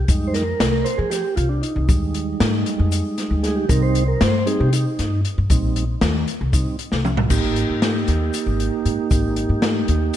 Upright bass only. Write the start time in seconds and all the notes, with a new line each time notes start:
0.08 F2
0.60 C2
0.98 F3
1.37 C2
1.76 C2
1.89 D#2
2.40 G#2
2.79 F2
3.30 D2
3.69 C2
4.21 G2
4.60 C3
4.99 G2
5.38 G2
5.50 A#1
6.02 D#2
6.41 C2
6.92 C2
7.30 G#1
7.69 G#2
8.08 D#2
8.46 G#1
8.85 G#2
9.11 G#1
9.49 G#2
9.88 D#2